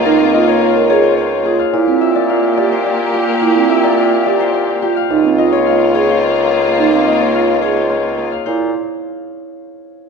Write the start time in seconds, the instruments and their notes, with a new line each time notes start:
Already playing: bassoon C#2, string section A#3 F4, harp G#4 C5 C#5 D#5 F5
0.05 marimba D#4, harp A#4
0.34 marimba F4, harp D#5
0.48 harp C#5
0.61 marimba F4, harp F5
0.76 marimba A#4
0.90 marimba G#4, harp C#5
1.03 harp C5
1.18 harp C#5
1.46 marimba F4, harp G#4
1.59 harp F5
1.73 bassoon A#2, string section A#3 G4, marimba E4
1.88 marimba C4
2.01 marimba F4, harp E5
2.15 harp D5
2.29 marimba F4, harp F5
2.57 marimba G4, harp D5
2.72 harp C5
2.86 harp D5
3.14 marimba F4, harp G4
3.28 harp F5
3.42 marimba E4
3.56 marimba C4
3.69 marimba F4, harp E5
3.84 harp D5
3.98 marimba F4, harp F5
4.26 marimba G4, harp D5
4.40 harp C5
4.54 harp D5
4.82 marimba F4, harp G4
4.96 harp F5
5.10 bassoon C#2, string section A#3 F4, marimba D#4
5.24 marimba C4
5.38 marimba F4, harp D#5
5.52 harp C#5
5.67 marimba F4, harp F5
5.94 marimba G#4, harp C#5
6.09 harp C5
6.22 harp C#5
6.50 harp G#4
6.65 harp F5
6.79 marimba D#4
6.92 marimba C4
7.07 harp D#5
7.20 harp C#5
7.34 marimba F4, harp F5
7.62 marimba G#4, harp C#5
7.76 harp C5
7.90 harp C#5
8.18 harp G#4
8.32 harp F5
8.46 bassoon A#2, marimba E4, harp C5